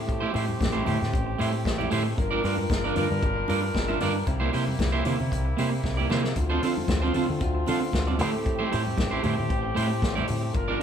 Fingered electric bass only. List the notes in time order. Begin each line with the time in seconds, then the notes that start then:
Already playing: A2
0.35 A2
0.61 A1
0.87 A2
1.02 A2
1.14 A1
1.40 A2
1.65 A1
1.92 A2
2.18 G1
2.44 G2
2.70 G1
2.96 G2
3.11 G2
3.23 G1
3.49 G2
3.75 G1
4.01 G2
4.28 C2
4.54 C3
4.79 C2
5.06 C3
5.20 C3
5.32 C2
5.59 C3
5.84 C2
6.11 C3
6.37 D2
6.63 D3
6.88 D2
7.16 D3
7.30 D3
7.42 D2
7.69 D3
7.94 D2
8.21 A2
8.74 A2
8.98 A1
9.25 A2
9.40 A2
9.50 A1
9.77 A2
10.03 A1
10.30 A2
10.55 G1